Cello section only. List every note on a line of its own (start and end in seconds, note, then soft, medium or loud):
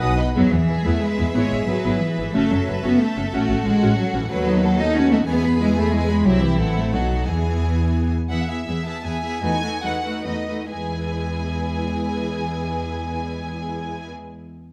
0.00 0.32 B2 medium
0.36 0.51 F#3 medium
0.52 0.86 E3 medium
0.85 1.02 A3 medium
1.02 1.34 G#3 medium
1.35 1.67 G#3 medium
1.68 2.00 F#3 medium
2.01 2.34 E3 medium
2.34 2.50 A3 medium
2.51 2.84 F#3 medium
2.84 3.00 B3 medium
3.01 3.32 A3 medium
3.33 3.65 A3 medium
3.65 3.97 G#3 medium
3.98 4.14 F#3 medium
4.14 4.21 E3 medium
4.31 4.78 F#3 medium
4.79 4.95 D#4 medium
4.95 5.12 C#4 medium
5.11 5.18 A3 medium
5.28 5.60 B3 medium
5.61 5.77 G#3 medium
5.77 5.93 A3 medium
5.93 6.26 G#3 medium
6.26 6.43 F#3 medium
6.42 6.76 E3 medium
6.77 6.93 A3 medium
6.94 7.27 F#3 medium
7.27 8.10 E3 medium
8.31 8.61 E2 medium
8.68 8.99 E2 soft
9.05 9.37 E2 soft
9.43 9.77 E2 medium
9.84 10.20 E2 medium
10.26 10.65 E2 soft
10.72 14.11 E2 soft